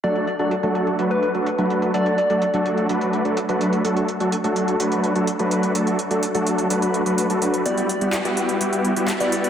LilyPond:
<<
  \new Staff \with { instrumentName = "Soft synth lead" } { \time 4/4 \key d \major \tempo 4 = 126 d''8 d''16 d''16 r4 r16 b'8 r4 r16 | d''8 d''4. r2 | r1 | r1 |
d''8 d''16 d''16 r2 r16 d''8 d''16 | }
  \new Staff \with { instrumentName = "Supersaw synth" } { \time 4/4 \key d \major <fis a d' fis' a'>8 r16 <fis a d' fis' a'>16 r16 <fis a d' fis' a'>8. <fis a d' fis' b'>8. <fis a d' fis' a'>16 r16 <fis a d' fis' b'>8. | <fis a d' fis' a'>8 r16 <fis a d' fis' a'>16 r16 <fis a d' fis' a'>8. <fis a d' fis' b'>8. <fis a d' fis' a'>16 r16 <fis a d' fis' b'>8. | <fis a d' fis' a'>8 r16 <fis a d' fis' a'>16 r16 <fis a d' fis' a'>8. <fis a d' fis' b'>8. <fis a d' fis' a'>16 r16 <fis a d' fis' b'>8. | <fis a d' fis' a'>8 r16 <fis a d' fis' a'>16 r16 <fis a d' fis' a'>8. <fis a d' fis' b'>8. <fis a d' fis' b'>8 <fis a d' fis' a'>16 <fis a d' fis' b'>8 |
<g b e' fis' g'>8 r16 <g b e' fis' g'>16 r16 <g b e' fis' g'>8. <g b e' fis' g'>8. <g b e' fis' g'>16 r16 <g b e' fis' g'>8. | }
  \new DrumStaff \with { instrumentName = "Drums" } \drummode { \time 4/4 hh16 hh16 hh16 hh16 hh16 hh16 hh16 hh16 hh16 hh16 hh16 hh16 hh16 hh16 hh16 hh16 | hh16 hh16 hh16 hh16 hh16 hh16 hh16 hh16 hh16 hh16 hh16 hh16 hh16 hh16 hh16 hh16 | hh16 hh16 hh16 hh16 hh16 hh16 hh16 hh16 hh16 hh16 hh16 hh16 hh16 hh16 hh16 hh16 | hh16 hh16 hh16 hh16 hh16 hh16 hh16 hh16 hh16 hh16 hh16 hh16 hh16 hh16 hh16 hh16 |
hh16 hh16 hh16 hh16 <hc hh>16 hh16 hh16 hh16 hh16 hh16 hh16 hh16 <hc hh>16 hh16 hh16 hh16 | }
>>